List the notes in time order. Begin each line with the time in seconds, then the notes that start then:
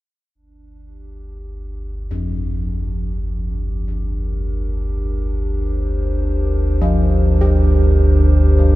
0.35 G1 D2 D4
0.84 G4
2.11 F2
3.96 A#4
5.55 C5
6.82 F3
7.41 G4